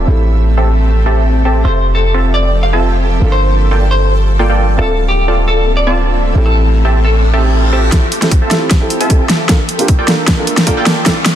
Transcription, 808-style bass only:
0.08 A1
1.65 F1
3.22 G1
4.79 D1
6.35 A1
8.42 F1
9.01 F1
9.99 G1
10.77 G1

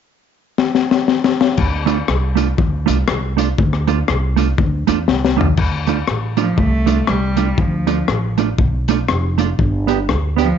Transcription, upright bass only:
1.58 D2
2.08 C2
2.58 D2
2.88 C2
3.09 C2
3.59 D2
4.09 C2
4.59 D2
4.88 E2
5.09 C2
5.58 D2
6.08 A1
6.58 C2
7.09 C2
7.58 D2
8.09 A1
8.59 B1
9.09 F1
9.59 G1
10.09 D2

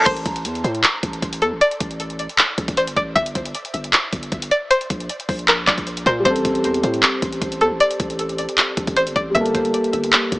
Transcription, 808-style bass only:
0.06 A1
0.26 A1
0.45 E2
0.64 A2
1.03 A1
1.22 A1
1.42 E2
1.52 A1
1.80 A1
2.58 A1
2.68 A1
2.87 G1
2.96 A1
3.16 G1
3.35 G1
3.74 G1
4.13 G1
4.32 G1
4.90 A#1
5.29 A#1
5.67 A#1
6.06 A#2
6.25 A1
6.45 A1
6.64 E2
6.84 A2
7.22 A1
7.42 A1
7.61 E2
7.71 A1
8.00 A1
8.77 A1
8.87 A1
9.07 G1
9.16 A1
9.35 G1
9.55 G1
9.93 G1
10.32 G1

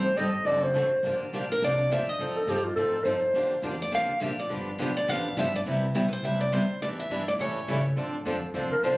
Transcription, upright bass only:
Already playing: A1
0.16 G1
0.45 F#1
0.74 A1
0.91 muted upright bass stroke
1.03 G1
1.20 muted upright bass stroke
1.33 A#1
1.62 C2
1.90 D2
2.19 F2
2.47 G2
2.76 A2
3.05 G2
3.22 muted upright bass stroke
3.33 F2
3.50 muted upright bass stroke
3.62 E2
3.92 D2
4.08 muted upright bass stroke
4.21 A#1
4.50 G1
4.79 B1
5.08 A1
5.37 G1
5.66 C2
5.95 B1
6.23 C2
6.52 D2
6.81 E2
6.98 muted upright bass stroke
7.10 G2
7.39 A2
7.67 C#3
7.97 A2
8.25 F2
8.54 D2
8.71 muted upright bass stroke
8.83 C2

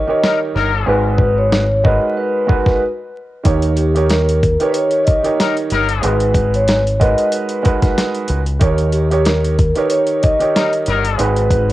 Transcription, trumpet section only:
0.23 G3 D#4 A#4
0.55 F#3 D#4 A#4
5.39 G3 D#4 A#4
5.72 F#3 D#4 A#4
10.55 G3 D#4 A#4
10.88 F#3 D#4 A#4

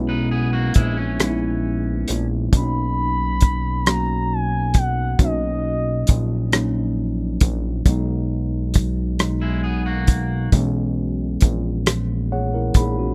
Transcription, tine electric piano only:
Already playing: G#3 B3 C#4 E4
1.19 G#3 B3 C#4 D#4
1.29 E4
2.52 F#3 A#3 C#4
2.56 D4
2.62 D#4
3.85 F#3 A#3 C#4 F#4
5.19 F#3 A#3 C#4 D#4
6.52 F#3 A#3 C#4 D#4
7.86 F#3 G#3 B3 D#4
9.19 B2 F#3 G#3 D#4
10.52 E3 G#3 A#3 C#4
10.61 B3
12.32 G#4 C#5 F#5
12.54 E4 A#4
12.77 D#4 G#4 B5
12.99 C#4 F#4

